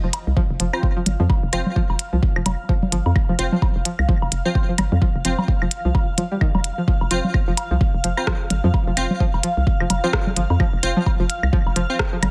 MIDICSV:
0, 0, Header, 1, 6, 480
1, 0, Start_track
1, 0, Tempo, 465116
1, 1339, Time_signature, 4, 2, 24, 8
1, 12702, End_track
2, 0, Start_track
2, 0, Title_t, "Ambient pad"
2, 0, Program_c, 0, 92
2, 0, Note_on_c, 0, 77, 76
2, 12702, Note_off_c, 0, 77, 0
2, 12702, End_track
3, 0, Start_track
3, 0, Title_t, "Synth stab"
3, 0, Program_c, 1, 62
3, 756, Note_on_c, 1, 60, 68
3, 756, Note_on_c, 1, 65, 63
3, 756, Note_on_c, 1, 72, 80
3, 847, Note_off_c, 1, 60, 0
3, 847, Note_off_c, 1, 65, 0
3, 847, Note_off_c, 1, 72, 0
3, 1577, Note_on_c, 1, 60, 88
3, 1577, Note_on_c, 1, 65, 81
3, 1577, Note_on_c, 1, 72, 99
3, 1656, Note_off_c, 1, 60, 0
3, 1656, Note_off_c, 1, 65, 0
3, 1656, Note_off_c, 1, 72, 0
3, 3496, Note_on_c, 1, 60, 90
3, 3496, Note_on_c, 1, 65, 79
3, 3497, Note_on_c, 1, 72, 96
3, 3576, Note_off_c, 1, 60, 0
3, 3576, Note_off_c, 1, 65, 0
3, 3576, Note_off_c, 1, 72, 0
3, 4597, Note_on_c, 1, 60, 75
3, 4597, Note_on_c, 1, 65, 66
3, 4597, Note_on_c, 1, 72, 76
3, 4687, Note_off_c, 1, 60, 0
3, 4687, Note_off_c, 1, 65, 0
3, 4687, Note_off_c, 1, 72, 0
3, 5417, Note_on_c, 1, 60, 85
3, 5417, Note_on_c, 1, 65, 80
3, 5417, Note_on_c, 1, 72, 96
3, 5496, Note_off_c, 1, 60, 0
3, 5496, Note_off_c, 1, 65, 0
3, 5496, Note_off_c, 1, 72, 0
3, 7337, Note_on_c, 1, 65, 84
3, 7338, Note_on_c, 1, 60, 84
3, 7338, Note_on_c, 1, 72, 100
3, 7416, Note_off_c, 1, 60, 0
3, 7416, Note_off_c, 1, 65, 0
3, 7417, Note_off_c, 1, 72, 0
3, 8436, Note_on_c, 1, 72, 77
3, 8437, Note_on_c, 1, 60, 69
3, 8437, Note_on_c, 1, 65, 63
3, 8527, Note_off_c, 1, 60, 0
3, 8527, Note_off_c, 1, 65, 0
3, 8527, Note_off_c, 1, 72, 0
3, 9257, Note_on_c, 1, 60, 88
3, 9257, Note_on_c, 1, 65, 79
3, 9257, Note_on_c, 1, 72, 98
3, 9336, Note_off_c, 1, 60, 0
3, 9336, Note_off_c, 1, 65, 0
3, 9336, Note_off_c, 1, 72, 0
3, 10358, Note_on_c, 1, 60, 73
3, 10358, Note_on_c, 1, 65, 66
3, 10358, Note_on_c, 1, 72, 79
3, 10448, Note_off_c, 1, 60, 0
3, 10448, Note_off_c, 1, 65, 0
3, 10448, Note_off_c, 1, 72, 0
3, 11178, Note_on_c, 1, 60, 90
3, 11178, Note_on_c, 1, 65, 83
3, 11178, Note_on_c, 1, 72, 100
3, 11257, Note_off_c, 1, 60, 0
3, 11257, Note_off_c, 1, 65, 0
3, 11257, Note_off_c, 1, 72, 0
3, 12278, Note_on_c, 1, 60, 75
3, 12278, Note_on_c, 1, 65, 66
3, 12278, Note_on_c, 1, 72, 75
3, 12368, Note_off_c, 1, 60, 0
3, 12368, Note_off_c, 1, 65, 0
3, 12368, Note_off_c, 1, 72, 0
3, 12702, End_track
4, 0, Start_track
4, 0, Title_t, "Synth pluck"
4, 0, Program_c, 2, 84
4, 37, Note_on_c, 2, 53, 75
4, 67, Note_off_c, 2, 53, 0
4, 378, Note_on_c, 2, 53, 87
4, 419, Note_off_c, 2, 53, 0
4, 617, Note_on_c, 2, 53, 72
4, 658, Note_off_c, 2, 53, 0
4, 998, Note_on_c, 2, 53, 75
4, 1027, Note_off_c, 2, 53, 0
4, 1237, Note_on_c, 2, 53, 77
4, 1267, Note_off_c, 2, 53, 0
4, 1576, Note_on_c, 2, 53, 78
4, 1618, Note_off_c, 2, 53, 0
4, 1816, Note_on_c, 2, 53, 83
4, 1858, Note_off_c, 2, 53, 0
4, 2196, Note_on_c, 2, 53, 73
4, 2226, Note_off_c, 2, 53, 0
4, 2436, Note_on_c, 2, 53, 77
4, 2466, Note_off_c, 2, 53, 0
4, 2776, Note_on_c, 2, 53, 84
4, 2818, Note_off_c, 2, 53, 0
4, 3016, Note_on_c, 2, 53, 79
4, 3058, Note_off_c, 2, 53, 0
4, 3397, Note_on_c, 2, 53, 74
4, 3427, Note_off_c, 2, 53, 0
4, 3637, Note_on_c, 2, 53, 79
4, 3667, Note_off_c, 2, 53, 0
4, 3976, Note_on_c, 2, 53, 75
4, 4018, Note_off_c, 2, 53, 0
4, 4217, Note_on_c, 2, 53, 85
4, 4258, Note_off_c, 2, 53, 0
4, 4597, Note_on_c, 2, 53, 77
4, 4627, Note_off_c, 2, 53, 0
4, 4838, Note_on_c, 2, 53, 73
4, 4867, Note_off_c, 2, 53, 0
4, 5178, Note_on_c, 2, 53, 78
4, 5219, Note_off_c, 2, 53, 0
4, 5418, Note_on_c, 2, 53, 73
4, 5459, Note_off_c, 2, 53, 0
4, 5798, Note_on_c, 2, 53, 75
4, 5827, Note_off_c, 2, 53, 0
4, 6038, Note_on_c, 2, 53, 73
4, 6067, Note_off_c, 2, 53, 0
4, 6377, Note_on_c, 2, 53, 75
4, 6419, Note_off_c, 2, 53, 0
4, 6518, Note_on_c, 2, 55, 77
4, 6547, Note_off_c, 2, 55, 0
4, 6617, Note_on_c, 2, 51, 89
4, 6679, Note_off_c, 2, 51, 0
4, 6998, Note_on_c, 2, 53, 77
4, 7027, Note_off_c, 2, 53, 0
4, 7097, Note_on_c, 2, 53, 80
4, 7139, Note_off_c, 2, 53, 0
4, 7338, Note_on_c, 2, 53, 73
4, 7379, Note_off_c, 2, 53, 0
4, 7718, Note_on_c, 2, 53, 76
4, 7747, Note_off_c, 2, 53, 0
4, 7958, Note_on_c, 2, 53, 75
4, 7987, Note_off_c, 2, 53, 0
4, 8298, Note_on_c, 2, 53, 78
4, 8339, Note_off_c, 2, 53, 0
4, 8537, Note_on_c, 2, 53, 86
4, 8578, Note_off_c, 2, 53, 0
4, 8919, Note_on_c, 2, 53, 77
4, 8948, Note_off_c, 2, 53, 0
4, 9159, Note_on_c, 2, 53, 71
4, 9188, Note_off_c, 2, 53, 0
4, 9499, Note_on_c, 2, 53, 82
4, 9539, Note_off_c, 2, 53, 0
4, 9740, Note_on_c, 2, 53, 70
4, 9780, Note_off_c, 2, 53, 0
4, 10119, Note_on_c, 2, 53, 76
4, 10147, Note_off_c, 2, 53, 0
4, 10359, Note_on_c, 2, 53, 75
4, 10388, Note_off_c, 2, 53, 0
4, 10698, Note_on_c, 2, 53, 79
4, 10739, Note_off_c, 2, 53, 0
4, 10939, Note_on_c, 2, 53, 77
4, 10979, Note_off_c, 2, 53, 0
4, 11318, Note_on_c, 2, 53, 78
4, 11347, Note_off_c, 2, 53, 0
4, 11558, Note_on_c, 2, 53, 75
4, 11587, Note_off_c, 2, 53, 0
4, 11898, Note_on_c, 2, 53, 87
4, 11939, Note_off_c, 2, 53, 0
4, 12138, Note_on_c, 2, 53, 77
4, 12179, Note_off_c, 2, 53, 0
4, 12518, Note_on_c, 2, 53, 74
4, 12547, Note_off_c, 2, 53, 0
4, 12702, End_track
5, 0, Start_track
5, 0, Title_t, "FM bass"
5, 0, Program_c, 3, 39
5, 41, Note_on_c, 3, 29, 97
5, 116, Note_off_c, 3, 29, 0
5, 281, Note_on_c, 3, 36, 85
5, 356, Note_off_c, 3, 36, 0
5, 521, Note_on_c, 3, 29, 86
5, 596, Note_off_c, 3, 29, 0
5, 621, Note_on_c, 3, 29, 92
5, 727, Note_off_c, 3, 29, 0
5, 1100, Note_on_c, 3, 31, 90
5, 1207, Note_off_c, 3, 31, 0
5, 1239, Note_on_c, 3, 41, 99
5, 1315, Note_off_c, 3, 41, 0
5, 1480, Note_on_c, 3, 29, 100
5, 1556, Note_off_c, 3, 29, 0
5, 1580, Note_on_c, 3, 29, 80
5, 1687, Note_off_c, 3, 29, 0
5, 1959, Note_on_c, 3, 29, 97
5, 2035, Note_off_c, 3, 29, 0
5, 2199, Note_on_c, 3, 36, 83
5, 2276, Note_off_c, 3, 36, 0
5, 2439, Note_on_c, 3, 29, 90
5, 2516, Note_off_c, 3, 29, 0
5, 2537, Note_on_c, 3, 29, 88
5, 2646, Note_off_c, 3, 29, 0
5, 3018, Note_on_c, 3, 31, 89
5, 3126, Note_off_c, 3, 31, 0
5, 3158, Note_on_c, 3, 41, 102
5, 3235, Note_off_c, 3, 41, 0
5, 3398, Note_on_c, 3, 29, 96
5, 3475, Note_off_c, 3, 29, 0
5, 3499, Note_on_c, 3, 29, 77
5, 3607, Note_off_c, 3, 29, 0
5, 3879, Note_on_c, 3, 29, 97
5, 3955, Note_off_c, 3, 29, 0
5, 4119, Note_on_c, 3, 36, 83
5, 4195, Note_off_c, 3, 36, 0
5, 4359, Note_on_c, 3, 29, 88
5, 4435, Note_off_c, 3, 29, 0
5, 4459, Note_on_c, 3, 29, 91
5, 4566, Note_off_c, 3, 29, 0
5, 4940, Note_on_c, 3, 31, 87
5, 5047, Note_off_c, 3, 31, 0
5, 5079, Note_on_c, 3, 41, 100
5, 5155, Note_off_c, 3, 41, 0
5, 5320, Note_on_c, 3, 29, 95
5, 5396, Note_off_c, 3, 29, 0
5, 5420, Note_on_c, 3, 29, 83
5, 5527, Note_off_c, 3, 29, 0
5, 5800, Note_on_c, 3, 29, 97
5, 5876, Note_off_c, 3, 29, 0
5, 6039, Note_on_c, 3, 36, 82
5, 6115, Note_off_c, 3, 36, 0
5, 6759, Note_on_c, 3, 29, 85
5, 6934, Note_off_c, 3, 29, 0
5, 7238, Note_on_c, 3, 29, 100
5, 7315, Note_off_c, 3, 29, 0
5, 7338, Note_on_c, 3, 29, 81
5, 7446, Note_off_c, 3, 29, 0
5, 7718, Note_on_c, 3, 29, 96
5, 7795, Note_off_c, 3, 29, 0
5, 7957, Note_on_c, 3, 36, 84
5, 8035, Note_off_c, 3, 36, 0
5, 8199, Note_on_c, 3, 29, 91
5, 8275, Note_off_c, 3, 29, 0
5, 8298, Note_on_c, 3, 29, 90
5, 8406, Note_off_c, 3, 29, 0
5, 8778, Note_on_c, 3, 31, 92
5, 8886, Note_off_c, 3, 31, 0
5, 8917, Note_on_c, 3, 41, 95
5, 8995, Note_off_c, 3, 41, 0
5, 9158, Note_on_c, 3, 29, 104
5, 9235, Note_off_c, 3, 29, 0
5, 9257, Note_on_c, 3, 29, 76
5, 9366, Note_off_c, 3, 29, 0
5, 9640, Note_on_c, 3, 29, 93
5, 9716, Note_off_c, 3, 29, 0
5, 9879, Note_on_c, 3, 36, 84
5, 9956, Note_off_c, 3, 36, 0
5, 10119, Note_on_c, 3, 29, 89
5, 10196, Note_off_c, 3, 29, 0
5, 10219, Note_on_c, 3, 29, 91
5, 10327, Note_off_c, 3, 29, 0
5, 10698, Note_on_c, 3, 31, 88
5, 10806, Note_off_c, 3, 31, 0
5, 10838, Note_on_c, 3, 41, 100
5, 10915, Note_off_c, 3, 41, 0
5, 11078, Note_on_c, 3, 29, 97
5, 11155, Note_off_c, 3, 29, 0
5, 11178, Note_on_c, 3, 29, 77
5, 11286, Note_off_c, 3, 29, 0
5, 11557, Note_on_c, 3, 29, 97
5, 11635, Note_off_c, 3, 29, 0
5, 11797, Note_on_c, 3, 36, 86
5, 11874, Note_off_c, 3, 36, 0
5, 12038, Note_on_c, 3, 29, 90
5, 12115, Note_off_c, 3, 29, 0
5, 12138, Note_on_c, 3, 29, 90
5, 12246, Note_off_c, 3, 29, 0
5, 12617, Note_on_c, 3, 31, 90
5, 12702, Note_off_c, 3, 31, 0
5, 12702, End_track
6, 0, Start_track
6, 0, Title_t, "Drums"
6, 136, Note_on_c, 9, 42, 89
6, 139, Note_on_c, 9, 77, 43
6, 239, Note_off_c, 9, 42, 0
6, 242, Note_off_c, 9, 77, 0
6, 378, Note_on_c, 9, 36, 112
6, 481, Note_off_c, 9, 36, 0
6, 617, Note_on_c, 9, 42, 87
6, 720, Note_off_c, 9, 42, 0
6, 759, Note_on_c, 9, 75, 70
6, 759, Note_on_c, 9, 77, 44
6, 857, Note_on_c, 9, 36, 104
6, 862, Note_off_c, 9, 75, 0
6, 862, Note_off_c, 9, 77, 0
6, 960, Note_off_c, 9, 36, 0
6, 1097, Note_on_c, 9, 42, 88
6, 1097, Note_on_c, 9, 64, 89
6, 1200, Note_off_c, 9, 42, 0
6, 1201, Note_off_c, 9, 64, 0
6, 1237, Note_on_c, 9, 64, 77
6, 1338, Note_on_c, 9, 36, 121
6, 1339, Note_on_c, 9, 77, 45
6, 1340, Note_off_c, 9, 64, 0
6, 1441, Note_off_c, 9, 36, 0
6, 1442, Note_off_c, 9, 77, 0
6, 1577, Note_on_c, 9, 42, 96
6, 1578, Note_on_c, 9, 75, 62
6, 1680, Note_off_c, 9, 42, 0
6, 1681, Note_off_c, 9, 75, 0
6, 1718, Note_on_c, 9, 64, 79
6, 1818, Note_on_c, 9, 36, 103
6, 1821, Note_off_c, 9, 64, 0
6, 1921, Note_off_c, 9, 36, 0
6, 1959, Note_on_c, 9, 77, 45
6, 2056, Note_on_c, 9, 42, 92
6, 2062, Note_off_c, 9, 77, 0
6, 2159, Note_off_c, 9, 42, 0
6, 2297, Note_on_c, 9, 36, 124
6, 2401, Note_off_c, 9, 36, 0
6, 2438, Note_on_c, 9, 75, 67
6, 2537, Note_on_c, 9, 42, 91
6, 2538, Note_on_c, 9, 64, 86
6, 2538, Note_on_c, 9, 77, 48
6, 2541, Note_off_c, 9, 75, 0
6, 2640, Note_off_c, 9, 42, 0
6, 2642, Note_off_c, 9, 64, 0
6, 2642, Note_off_c, 9, 77, 0
6, 2777, Note_on_c, 9, 36, 106
6, 2881, Note_off_c, 9, 36, 0
6, 2918, Note_on_c, 9, 64, 93
6, 3017, Note_on_c, 9, 42, 91
6, 3021, Note_off_c, 9, 64, 0
6, 3120, Note_off_c, 9, 42, 0
6, 3158, Note_on_c, 9, 77, 46
6, 3257, Note_on_c, 9, 36, 119
6, 3257, Note_on_c, 9, 75, 62
6, 3261, Note_off_c, 9, 77, 0
6, 3360, Note_off_c, 9, 36, 0
6, 3360, Note_off_c, 9, 75, 0
6, 3497, Note_on_c, 9, 42, 93
6, 3600, Note_off_c, 9, 42, 0
6, 3637, Note_on_c, 9, 64, 80
6, 3737, Note_on_c, 9, 36, 108
6, 3738, Note_on_c, 9, 77, 48
6, 3740, Note_off_c, 9, 64, 0
6, 3840, Note_off_c, 9, 36, 0
6, 3841, Note_off_c, 9, 77, 0
6, 3977, Note_on_c, 9, 42, 92
6, 4080, Note_off_c, 9, 42, 0
6, 4117, Note_on_c, 9, 75, 65
6, 4217, Note_on_c, 9, 36, 123
6, 4221, Note_off_c, 9, 75, 0
6, 4320, Note_off_c, 9, 36, 0
6, 4358, Note_on_c, 9, 77, 47
6, 4457, Note_on_c, 9, 42, 96
6, 4461, Note_off_c, 9, 77, 0
6, 4560, Note_off_c, 9, 42, 0
6, 4697, Note_on_c, 9, 36, 107
6, 4800, Note_off_c, 9, 36, 0
6, 4935, Note_on_c, 9, 42, 91
6, 4938, Note_on_c, 9, 64, 92
6, 4938, Note_on_c, 9, 75, 59
6, 4938, Note_on_c, 9, 77, 46
6, 5038, Note_off_c, 9, 42, 0
6, 5041, Note_off_c, 9, 64, 0
6, 5041, Note_off_c, 9, 75, 0
6, 5041, Note_off_c, 9, 77, 0
6, 5077, Note_on_c, 9, 64, 79
6, 5177, Note_on_c, 9, 36, 117
6, 5180, Note_off_c, 9, 64, 0
6, 5280, Note_off_c, 9, 36, 0
6, 5416, Note_on_c, 9, 42, 96
6, 5519, Note_off_c, 9, 42, 0
6, 5558, Note_on_c, 9, 64, 81
6, 5558, Note_on_c, 9, 77, 47
6, 5657, Note_on_c, 9, 36, 106
6, 5661, Note_off_c, 9, 64, 0
6, 5661, Note_off_c, 9, 77, 0
6, 5761, Note_off_c, 9, 36, 0
6, 5797, Note_on_c, 9, 75, 62
6, 5895, Note_on_c, 9, 42, 91
6, 5901, Note_off_c, 9, 75, 0
6, 5999, Note_off_c, 9, 42, 0
6, 6137, Note_on_c, 9, 77, 45
6, 6138, Note_on_c, 9, 36, 119
6, 6240, Note_off_c, 9, 77, 0
6, 6241, Note_off_c, 9, 36, 0
6, 6376, Note_on_c, 9, 42, 91
6, 6377, Note_on_c, 9, 64, 82
6, 6479, Note_off_c, 9, 42, 0
6, 6480, Note_off_c, 9, 64, 0
6, 6616, Note_on_c, 9, 75, 63
6, 6617, Note_on_c, 9, 36, 104
6, 6720, Note_off_c, 9, 36, 0
6, 6720, Note_off_c, 9, 75, 0
6, 6757, Note_on_c, 9, 64, 91
6, 6757, Note_on_c, 9, 77, 45
6, 6855, Note_on_c, 9, 42, 87
6, 6860, Note_off_c, 9, 64, 0
6, 6860, Note_off_c, 9, 77, 0
6, 6959, Note_off_c, 9, 42, 0
6, 7097, Note_on_c, 9, 36, 117
6, 7201, Note_off_c, 9, 36, 0
6, 7237, Note_on_c, 9, 77, 43
6, 7336, Note_on_c, 9, 42, 91
6, 7340, Note_off_c, 9, 77, 0
6, 7439, Note_off_c, 9, 42, 0
6, 7477, Note_on_c, 9, 64, 73
6, 7576, Note_on_c, 9, 75, 65
6, 7577, Note_on_c, 9, 36, 100
6, 7580, Note_off_c, 9, 64, 0
6, 7679, Note_off_c, 9, 75, 0
6, 7681, Note_off_c, 9, 36, 0
6, 7817, Note_on_c, 9, 42, 88
6, 7817, Note_on_c, 9, 77, 44
6, 7920, Note_off_c, 9, 42, 0
6, 7920, Note_off_c, 9, 77, 0
6, 8058, Note_on_c, 9, 36, 118
6, 8161, Note_off_c, 9, 36, 0
6, 8297, Note_on_c, 9, 42, 87
6, 8400, Note_off_c, 9, 42, 0
6, 8436, Note_on_c, 9, 75, 59
6, 8436, Note_on_c, 9, 77, 42
6, 8536, Note_on_c, 9, 37, 100
6, 8538, Note_on_c, 9, 36, 103
6, 8539, Note_off_c, 9, 75, 0
6, 8539, Note_off_c, 9, 77, 0
6, 8639, Note_off_c, 9, 37, 0
6, 8641, Note_off_c, 9, 36, 0
6, 8776, Note_on_c, 9, 42, 86
6, 8777, Note_on_c, 9, 64, 83
6, 8879, Note_off_c, 9, 42, 0
6, 8880, Note_off_c, 9, 64, 0
6, 8917, Note_on_c, 9, 64, 72
6, 9017, Note_on_c, 9, 77, 43
6, 9018, Note_on_c, 9, 36, 110
6, 9020, Note_off_c, 9, 64, 0
6, 9120, Note_off_c, 9, 77, 0
6, 9121, Note_off_c, 9, 36, 0
6, 9257, Note_on_c, 9, 42, 89
6, 9257, Note_on_c, 9, 75, 64
6, 9360, Note_off_c, 9, 42, 0
6, 9361, Note_off_c, 9, 75, 0
6, 9398, Note_on_c, 9, 64, 71
6, 9498, Note_on_c, 9, 36, 99
6, 9501, Note_off_c, 9, 64, 0
6, 9601, Note_off_c, 9, 36, 0
6, 9639, Note_on_c, 9, 77, 44
6, 9736, Note_on_c, 9, 42, 86
6, 9742, Note_off_c, 9, 77, 0
6, 9839, Note_off_c, 9, 42, 0
6, 9978, Note_on_c, 9, 36, 117
6, 10081, Note_off_c, 9, 36, 0
6, 10118, Note_on_c, 9, 75, 63
6, 10217, Note_on_c, 9, 42, 86
6, 10219, Note_on_c, 9, 64, 77
6, 10219, Note_on_c, 9, 77, 42
6, 10221, Note_off_c, 9, 75, 0
6, 10320, Note_off_c, 9, 42, 0
6, 10322, Note_off_c, 9, 64, 0
6, 10322, Note_off_c, 9, 77, 0
6, 10457, Note_on_c, 9, 36, 104
6, 10457, Note_on_c, 9, 37, 97
6, 10560, Note_off_c, 9, 37, 0
6, 10561, Note_off_c, 9, 36, 0
6, 10599, Note_on_c, 9, 64, 86
6, 10697, Note_on_c, 9, 42, 86
6, 10702, Note_off_c, 9, 64, 0
6, 10800, Note_off_c, 9, 42, 0
6, 10839, Note_on_c, 9, 77, 42
6, 10938, Note_on_c, 9, 36, 110
6, 10938, Note_on_c, 9, 75, 67
6, 10942, Note_off_c, 9, 77, 0
6, 11041, Note_off_c, 9, 36, 0
6, 11042, Note_off_c, 9, 75, 0
6, 11177, Note_on_c, 9, 42, 92
6, 11280, Note_off_c, 9, 42, 0
6, 11319, Note_on_c, 9, 64, 75
6, 11418, Note_on_c, 9, 36, 99
6, 11419, Note_on_c, 9, 77, 43
6, 11422, Note_off_c, 9, 64, 0
6, 11521, Note_off_c, 9, 36, 0
6, 11522, Note_off_c, 9, 77, 0
6, 11657, Note_on_c, 9, 42, 83
6, 11761, Note_off_c, 9, 42, 0
6, 11800, Note_on_c, 9, 75, 68
6, 11898, Note_on_c, 9, 36, 110
6, 11903, Note_off_c, 9, 75, 0
6, 12001, Note_off_c, 9, 36, 0
6, 12040, Note_on_c, 9, 77, 41
6, 12137, Note_on_c, 9, 42, 83
6, 12143, Note_off_c, 9, 77, 0
6, 12241, Note_off_c, 9, 42, 0
6, 12378, Note_on_c, 9, 36, 96
6, 12378, Note_on_c, 9, 37, 105
6, 12481, Note_off_c, 9, 36, 0
6, 12481, Note_off_c, 9, 37, 0
6, 12618, Note_on_c, 9, 42, 81
6, 12618, Note_on_c, 9, 64, 88
6, 12618, Note_on_c, 9, 75, 68
6, 12618, Note_on_c, 9, 77, 41
6, 12702, Note_off_c, 9, 42, 0
6, 12702, Note_off_c, 9, 64, 0
6, 12702, Note_off_c, 9, 75, 0
6, 12702, Note_off_c, 9, 77, 0
6, 12702, End_track
0, 0, End_of_file